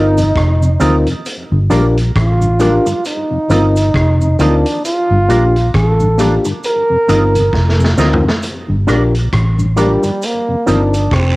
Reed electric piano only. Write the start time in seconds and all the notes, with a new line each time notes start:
Already playing: C4 D#4 F4 A#4
0.80 C4 D#4 F4 A#4
1.70 D4 F4 G4 A#4
2.60 D4 F4 G4 A#4
3.50 C4 D#4 F4 A#4
4.39 C4 D#4 F4 A#4
5.29 A#3 D4 F4 G4
6.18 A#3 D4 F4 G4
7.08 C4 D#4 F4 A#4
7.97 C4 D#4 F4 A#4
8.87 D4 F4 G4 A#4
9.77 D4 F4 G4 A#4
10.67 C4 D#4 F4 A#4